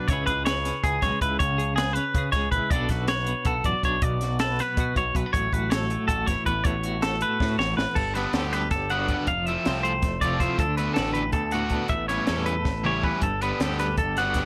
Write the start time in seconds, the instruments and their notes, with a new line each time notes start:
Already playing: clean electric guitar B3 B4
0.08 picked electric bass C#2, clean electric guitar C#3 C#4 E4 C#5, kick, closed hi-hat
0.12 clean electric guitar G#4 B4
0.26 picked electric bass C#2, clean electric guitar G#4 B4, kick, closed hi-hat
0.45 clean electric guitar B4 C#5, snare, closed hi-hat
0.65 clean electric guitar C#4, snare, closed hi-hat
0.84 picked electric bass C#2, clean electric guitar G#4, kick, closed hi-hat
1.02 picked electric bass B1, clean electric guitar G#3 C#5, kick, snare, closed hi-hat
1.21 picked electric bass C#2, clean electric guitar E4 B4, kick, closed hi-hat
1.39 picked electric bass C#2, clean electric guitar C#3 C#5, kick, closed hi-hat
1.58 clean electric guitar G#4, closed hi-hat
1.76 clean electric guitar G#4 B4, snare, closed hi-hat
1.93 clean electric guitar C#4 B4, closed hi-hat
2.15 picked electric bass C#3, clean electric guitar G#4, kick, closed hi-hat
2.32 picked electric bass C#2, clean electric guitar C#5, kick, snare, closed hi-hat
2.36 clean electric guitar G#3
2.51 picked electric bass A#1, clean electric guitar B4, kick, closed hi-hat
2.56 clean electric guitar E4
2.70 picked electric bass B1, clean electric guitar B2 B3 D4 D5, kick, closed hi-hat
2.74 clean electric guitar F#4 A4
2.89 picked electric bass B1, clean electric guitar F#4 B4, kick, snare, closed hi-hat
3.08 clean electric guitar B4 C#5, snare, closed hi-hat
3.27 clean electric guitar B3, closed hi-hat
3.45 picked electric bass B1, clean electric guitar F#4 A4, kick, closed hi-hat
3.64 picked electric bass A1, clean electric guitar F#3 D5, kick, closed hi-hat
3.83 picked electric bass B1, clean electric guitar D4 C#5, kick, closed hi-hat
4.02 picked electric bass B1, clean electric guitar B2 D5, kick, closed hi-hat
4.21 clean electric guitar F#4, snare, closed hi-hat
4.39 clean electric guitar A4 B4, snare, closed hi-hat
4.59 clean electric guitar B3 B4, snare, closed hi-hat
4.77 picked electric bass B2, clean electric guitar F#4, kick, closed hi-hat
4.96 picked electric bass B1, clean electric guitar F#3 C#5, kick, closed hi-hat
5.15 picked electric bass B1, clean electric guitar B3 B4, kick, closed hi-hat
5.26 clean electric guitar D4
5.33 picked electric bass A1, clean electric guitar A2 C#5, kick, closed hi-hat
5.53 picked electric bass A1, clean electric guitar F#4 B4, kick, closed hi-hat
5.70 clean electric guitar A4 C#5, snare, closed hi-hat
5.90 clean electric guitar A3, closed hi-hat
6.08 picked electric bass A1, clean electric guitar F#4 A4, kick, closed hi-hat
6.26 picked electric bass G1, clean electric guitar E3 C#5, kick, snare, closed hi-hat
6.46 picked electric bass A1, clean electric guitar B3 B4, kick, closed hi-hat
6.64 picked electric bass A1, clean electric guitar A2 C#5, kick, closed hi-hat
6.83 clean electric guitar F#4, closed hi-hat
7.02 clean electric guitar A4, snare, closed hi-hat
7.21 clean electric guitar A3 B4, closed hi-hat
7.40 picked electric bass A2, clean electric guitar F#4, kick, snare
7.58 picked electric bass A1, clean electric guitar E3 C#5, snare
7.77 picked electric bass A1, clean electric guitar B3 B4, snare
7.95 picked electric bass G1, clean electric guitar G2 A4, kick, crash
8.14 overdriven electric guitar D3 G3 B3 D4, clean electric guitar B3 B4, snare, closed hi-hat
8.33 picked electric bass D2, overdriven electric guitar D3 G3 B3 D4, clean electric guitar G4 A4, snare, closed hi-hat
8.53 clean electric guitar G3 B4, snare, closed hi-hat
8.71 picked electric bass G1, clean electric guitar A4, kick, snare, closed hi-hat
8.90 clean electric guitar D3 F#4 F#5, overdriven electric guitar D3 G3 B3 D4, closed hi-hat
9.08 overdriven electric guitar D3 G3 B3 D4, clean electric guitar B3, kick, closed hi-hat
9.27 picked electric bass F1, clean electric guitar F3 F5, kick, closed hi-hat
9.46 overdriven electric guitar F3 A3 C4 F4, clean electric guitar E4 E5, closed hi-hat
9.65 picked electric bass C2, overdriven electric guitar F3 A3 C4 F4, clean electric guitar C5, snare, closed hi-hat
9.83 clean electric guitar A3 C5, closed hi-hat
10.02 picked electric bass F1, kick, snare, closed hi-hat
10.21 clean electric guitar C3 F4 D5, overdriven electric guitar F3 A3 C4 F4, kick, closed hi-hat
10.40 overdriven electric guitar F3 A3 C4 F4, clean electric guitar E4 C5, kick, closed hi-hat
10.59 picked electric bass D2, clean electric guitar D3 A4, kick, closed hi-hat
10.77 overdriven electric guitar D3 A3 D4 F#4, clean electric guitar B3 B4, closed hi-hat
10.94 picked electric bass A1, overdriven electric guitar D3 A3 D4, clean electric guitar A4, snare, closed hi-hat
10.99 overdriven electric guitar F#4, clean electric guitar B4
11.14 clean electric guitar A3 B4, closed hi-hat
11.32 picked electric bass D2, clean electric guitar A4, kick, closed hi-hat
11.51 clean electric guitar A2 F#4 F#5, overdriven electric guitar A3 D4 F#4, closed hi-hat
11.55 overdriven electric guitar D3
11.69 overdriven electric guitar D3 A3 D4 F#4, clean electric guitar B3, kick, closed hi-hat
11.88 picked electric bass A1, clean electric guitar A2 E5, kick, closed hi-hat
12.08 overdriven electric guitar E3 G3 C#4 E4, clean electric guitar B3 C#5, snare, closed hi-hat
12.27 picked electric bass E2, overdriven electric guitar E3 G3 C#4 E4, clean electric guitar A4, snare, closed hi-hat
12.46 clean electric guitar A3 B4, closed hi-hat
12.65 picked electric bass A1, kick, snare
12.84 overdriven electric guitar E3 G3 C#4 E4, clean electric guitar E3 G4 C#5, mid tom
13.03 overdriven electric guitar E3 G3 C#4 E4, clean electric guitar B3 B4, kick
13.21 picked electric bass G1, clean electric guitar G2 A4, kick, closed hi-hat
13.42 overdriven electric guitar D3 G3 B3 D4, clean electric guitar B3 B4, closed hi-hat
13.60 picked electric bass D2, overdriven electric guitar D3 G3 B3 D4, clean electric guitar G4 A4, snare, closed hi-hat
13.79 clean electric guitar G3 B4, snare, closed hi-hat
13.97 picked electric bass G1, clean electric guitar A4, kick, closed hi-hat
14.17 clean electric guitar D3 F#4 F#5, overdriven electric guitar D3 G3 B3 D4, snare, closed hi-hat
14.34 overdriven electric guitar D3 G3 B3, clean electric guitar B3, kick, snare, closed hi-hat
14.39 overdriven electric guitar D4